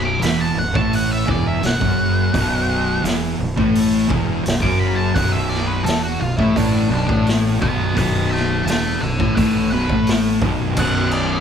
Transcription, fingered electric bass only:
0.00 0.19 B0 medium
0.22 0.55 E1 medium
0.57 0.74 B0 medium
0.75 1.25 A1 loud
1.29 1.62 E1 medium
1.63 1.80 B0 medium
1.81 2.31 F#1 loud
2.34 3.01 B0 medium
3.04 3.37 E1 medium
3.40 3.56 B0 medium
3.58 4.07 A1 loud
4.11 4.44 E1 loud
4.47 4.63 B0 medium
4.63 5.13 F#1 medium
5.16 5.83 B0 loud
5.87 6.20 E1 medium
6.22 6.38 B0 medium
6.38 6.55 A1 loud
6.56 6.89 A1 medium
6.91 7.08 B0 medium
7.09 7.58 A1 loud
7.62 7.95 B0 loud
7.97 8.63 B0 loud
8.66 8.99 E1 medium
9.03 9.19 B0 medium
9.20 9.36 A1 loud
9.38 9.70 A1 medium
9.73 9.89 B0 loud
9.90 10.38 A1 medium
10.41 10.74 B0 loud
10.77 11.38 B0 loud

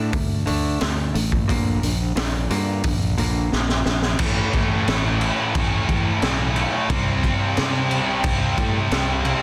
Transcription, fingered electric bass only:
0.13 0.43 D2 medium
0.48 0.78 D2 medium
0.82 1.12 D2 medium
1.15 1.45 A1 medium
1.49 1.79 A#1 medium
1.83 2.13 A#1 medium
2.16 2.47 A#1 medium
2.50 2.80 G2 medium
2.84 3.14 A#1 medium
3.19 3.49 A#1 medium
3.53 3.83 A#1 medium
3.86 4.16 A#1 medium
4.19 4.40 A1 medium
4.54 4.74 A1 medium
4.88 5.29 A1 medium
5.55 5.76 A1 medium
5.89 6.09 E2 medium
6.22 6.64 B1 medium
6.90 7.31 C2 loud
7.58 7.99 C3 medium
8.24 8.45 C2 medium
8.58 8.78 A2 medium
8.91 9.33 C2 medium

